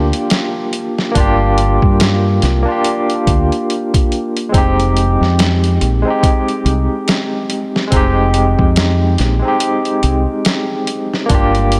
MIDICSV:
0, 0, Header, 1, 4, 480
1, 0, Start_track
1, 0, Tempo, 845070
1, 657, Time_signature, 4, 2, 24, 8
1, 6702, End_track
2, 0, Start_track
2, 0, Title_t, "Tine electric piano"
2, 0, Program_c, 0, 4
2, 0, Control_c, 0, 64, 127
2, 0, Note_on_c, 0, 58, 87
2, 0, Note_on_c, 0, 62, 77
2, 0, Note_on_c, 0, 65, 82
2, 0, Note_on_c, 0, 67, 93
2, 618, Note_off_c, 0, 58, 0
2, 626, Note_off_c, 0, 62, 0
2, 633, Note_on_c, 0, 58, 98
2, 636, Note_off_c, 0, 65, 0
2, 644, Note_off_c, 0, 67, 0
2, 651, Note_on_c, 0, 62, 93
2, 667, Note_on_c, 0, 65, 93
2, 683, Note_on_c, 0, 67, 108
2, 1472, Note_off_c, 0, 58, 0
2, 1480, Note_off_c, 0, 62, 0
2, 1488, Note_off_c, 0, 65, 0
2, 1492, Note_on_c, 0, 58, 91
2, 1496, Note_off_c, 0, 67, 0
2, 1508, Note_on_c, 0, 62, 78
2, 1525, Note_on_c, 0, 65, 82
2, 1544, Note_on_c, 0, 67, 99
2, 2540, Note_off_c, 0, 58, 0
2, 2548, Note_off_c, 0, 62, 0
2, 2551, Note_on_c, 0, 56, 100
2, 2556, Note_off_c, 0, 65, 0
2, 2566, Note_off_c, 0, 67, 0
2, 2568, Note_on_c, 0, 60, 92
2, 2583, Control_c, 0, 64, 0
2, 2583, Note_on_c, 0, 63, 93
2, 2600, Note_on_c, 0, 67, 109
2, 2669, Control_c, 0, 64, 127
2, 3391, Note_off_c, 0, 56, 0
2, 3399, Note_off_c, 0, 60, 0
2, 3407, Note_off_c, 0, 63, 0
2, 3415, Note_off_c, 0, 67, 0
2, 3418, Note_on_c, 0, 56, 90
2, 3436, Note_on_c, 0, 60, 78
2, 3450, Note_on_c, 0, 63, 76
2, 3467, Note_on_c, 0, 67, 99
2, 4463, Note_off_c, 0, 56, 0
2, 4472, Note_off_c, 0, 60, 0
2, 4474, Note_on_c, 0, 56, 104
2, 4479, Note_off_c, 0, 63, 0
2, 4488, Note_off_c, 0, 67, 0
2, 4490, Note_on_c, 0, 60, 93
2, 4507, Note_on_c, 0, 63, 92
2, 4523, Note_on_c, 0, 67, 108
2, 5312, Note_off_c, 0, 56, 0
2, 5320, Note_off_c, 0, 60, 0
2, 5328, Note_off_c, 0, 63, 0
2, 5335, Note_on_c, 0, 56, 86
2, 5337, Note_off_c, 0, 67, 0
2, 5351, Note_on_c, 0, 60, 83
2, 5366, Note_on_c, 0, 63, 76
2, 5385, Note_on_c, 0, 67, 96
2, 6382, Note_off_c, 0, 56, 0
2, 6390, Note_off_c, 0, 60, 0
2, 6395, Note_on_c, 0, 58, 107
2, 6397, Note_off_c, 0, 63, 0
2, 6406, Note_off_c, 0, 67, 0
2, 6411, Note_on_c, 0, 62, 94
2, 6423, Control_c, 0, 64, 0
2, 6426, Note_on_c, 0, 65, 91
2, 6445, Note_on_c, 0, 67, 117
2, 6525, Control_c, 0, 64, 127
2, 6702, Note_off_c, 0, 58, 0
2, 6702, Note_off_c, 0, 62, 0
2, 6702, Note_off_c, 0, 65, 0
2, 6702, Note_off_c, 0, 67, 0
2, 6702, End_track
3, 0, Start_track
3, 0, Title_t, "Fingered electric bass"
3, 0, Program_c, 1, 33
3, 0, Note_on_c, 1, 38, 95
3, 60, Note_off_c, 1, 38, 0
3, 658, Note_on_c, 1, 31, 93
3, 1011, Note_off_c, 1, 31, 0
3, 1036, Note_on_c, 1, 43, 106
3, 1357, Note_off_c, 1, 43, 0
3, 1378, Note_on_c, 1, 36, 89
3, 1501, Note_off_c, 1, 36, 0
3, 1858, Note_on_c, 1, 38, 95
3, 1981, Note_off_c, 1, 38, 0
3, 2578, Note_on_c, 1, 29, 99
3, 2931, Note_off_c, 1, 29, 0
3, 2958, Note_on_c, 1, 41, 106
3, 3278, Note_off_c, 1, 41, 0
3, 3301, Note_on_c, 1, 34, 83
3, 3422, Note_off_c, 1, 34, 0
3, 3777, Note_on_c, 1, 36, 93
3, 3900, Note_off_c, 1, 36, 0
3, 4501, Note_on_c, 1, 29, 92
3, 4852, Note_off_c, 1, 29, 0
3, 4879, Note_on_c, 1, 41, 111
3, 5199, Note_off_c, 1, 41, 0
3, 5221, Note_on_c, 1, 34, 90
3, 5342, Note_off_c, 1, 34, 0
3, 5698, Note_on_c, 1, 36, 91
3, 5821, Note_off_c, 1, 36, 0
3, 6420, Note_on_c, 1, 31, 99
3, 6702, Note_off_c, 1, 31, 0
3, 6702, End_track
4, 0, Start_track
4, 0, Title_t, "Drums"
4, 75, Note_on_c, 9, 42, 64
4, 132, Note_off_c, 9, 42, 0
4, 171, Note_on_c, 9, 42, 84
4, 178, Note_on_c, 9, 38, 111
4, 228, Note_off_c, 9, 42, 0
4, 234, Note_off_c, 9, 38, 0
4, 414, Note_on_c, 9, 42, 67
4, 470, Note_off_c, 9, 42, 0
4, 559, Note_on_c, 9, 38, 48
4, 616, Note_off_c, 9, 38, 0
4, 655, Note_on_c, 9, 36, 103
4, 655, Note_on_c, 9, 42, 85
4, 712, Note_off_c, 9, 36, 0
4, 712, Note_off_c, 9, 42, 0
4, 896, Note_on_c, 9, 42, 70
4, 953, Note_off_c, 9, 42, 0
4, 1035, Note_on_c, 9, 36, 88
4, 1092, Note_off_c, 9, 36, 0
4, 1136, Note_on_c, 9, 42, 90
4, 1142, Note_on_c, 9, 38, 114
4, 1193, Note_off_c, 9, 42, 0
4, 1199, Note_off_c, 9, 38, 0
4, 1376, Note_on_c, 9, 42, 68
4, 1382, Note_on_c, 9, 38, 38
4, 1432, Note_off_c, 9, 42, 0
4, 1439, Note_off_c, 9, 38, 0
4, 1616, Note_on_c, 9, 42, 83
4, 1673, Note_off_c, 9, 42, 0
4, 1759, Note_on_c, 9, 42, 44
4, 1816, Note_off_c, 9, 42, 0
4, 1857, Note_on_c, 9, 36, 99
4, 1859, Note_on_c, 9, 42, 75
4, 1914, Note_off_c, 9, 36, 0
4, 1916, Note_off_c, 9, 42, 0
4, 2001, Note_on_c, 9, 42, 38
4, 2058, Note_off_c, 9, 42, 0
4, 2101, Note_on_c, 9, 42, 60
4, 2158, Note_off_c, 9, 42, 0
4, 2238, Note_on_c, 9, 36, 101
4, 2240, Note_on_c, 9, 42, 85
4, 2295, Note_off_c, 9, 36, 0
4, 2297, Note_off_c, 9, 42, 0
4, 2340, Note_on_c, 9, 42, 41
4, 2396, Note_off_c, 9, 42, 0
4, 2480, Note_on_c, 9, 42, 62
4, 2537, Note_off_c, 9, 42, 0
4, 2577, Note_on_c, 9, 36, 106
4, 2579, Note_on_c, 9, 42, 86
4, 2634, Note_off_c, 9, 36, 0
4, 2636, Note_off_c, 9, 42, 0
4, 2724, Note_on_c, 9, 42, 42
4, 2781, Note_off_c, 9, 42, 0
4, 2821, Note_on_c, 9, 42, 69
4, 2877, Note_off_c, 9, 42, 0
4, 2970, Note_on_c, 9, 38, 43
4, 3026, Note_off_c, 9, 38, 0
4, 3062, Note_on_c, 9, 42, 87
4, 3068, Note_on_c, 9, 38, 121
4, 3118, Note_off_c, 9, 42, 0
4, 3125, Note_off_c, 9, 38, 0
4, 3202, Note_on_c, 9, 42, 49
4, 3259, Note_off_c, 9, 42, 0
4, 3302, Note_on_c, 9, 42, 70
4, 3359, Note_off_c, 9, 42, 0
4, 3539, Note_on_c, 9, 36, 111
4, 3542, Note_on_c, 9, 42, 89
4, 3595, Note_off_c, 9, 36, 0
4, 3599, Note_off_c, 9, 42, 0
4, 3683, Note_on_c, 9, 42, 44
4, 3740, Note_off_c, 9, 42, 0
4, 3782, Note_on_c, 9, 42, 66
4, 3839, Note_off_c, 9, 42, 0
4, 4020, Note_on_c, 9, 42, 83
4, 4026, Note_on_c, 9, 38, 105
4, 4077, Note_off_c, 9, 42, 0
4, 4083, Note_off_c, 9, 38, 0
4, 4258, Note_on_c, 9, 42, 73
4, 4315, Note_off_c, 9, 42, 0
4, 4407, Note_on_c, 9, 38, 54
4, 4464, Note_off_c, 9, 38, 0
4, 4498, Note_on_c, 9, 36, 113
4, 4498, Note_on_c, 9, 42, 88
4, 4554, Note_off_c, 9, 36, 0
4, 4554, Note_off_c, 9, 42, 0
4, 4736, Note_on_c, 9, 42, 71
4, 4793, Note_off_c, 9, 42, 0
4, 4877, Note_on_c, 9, 36, 85
4, 4934, Note_off_c, 9, 36, 0
4, 4976, Note_on_c, 9, 42, 85
4, 4983, Note_on_c, 9, 38, 111
4, 5033, Note_off_c, 9, 42, 0
4, 5039, Note_off_c, 9, 38, 0
4, 5216, Note_on_c, 9, 42, 66
4, 5222, Note_on_c, 9, 38, 40
4, 5273, Note_off_c, 9, 42, 0
4, 5279, Note_off_c, 9, 38, 0
4, 5454, Note_on_c, 9, 42, 89
4, 5511, Note_off_c, 9, 42, 0
4, 5596, Note_on_c, 9, 42, 40
4, 5653, Note_off_c, 9, 42, 0
4, 5696, Note_on_c, 9, 42, 68
4, 5753, Note_off_c, 9, 42, 0
4, 5935, Note_on_c, 9, 42, 91
4, 5941, Note_on_c, 9, 38, 107
4, 5992, Note_off_c, 9, 42, 0
4, 5998, Note_off_c, 9, 38, 0
4, 6176, Note_on_c, 9, 42, 73
4, 6233, Note_off_c, 9, 42, 0
4, 6325, Note_on_c, 9, 38, 40
4, 6382, Note_off_c, 9, 38, 0
4, 6416, Note_on_c, 9, 36, 112
4, 6416, Note_on_c, 9, 42, 87
4, 6473, Note_off_c, 9, 36, 0
4, 6473, Note_off_c, 9, 42, 0
4, 6559, Note_on_c, 9, 42, 43
4, 6616, Note_off_c, 9, 42, 0
4, 6656, Note_on_c, 9, 42, 75
4, 6702, Note_off_c, 9, 42, 0
4, 6702, End_track
0, 0, End_of_file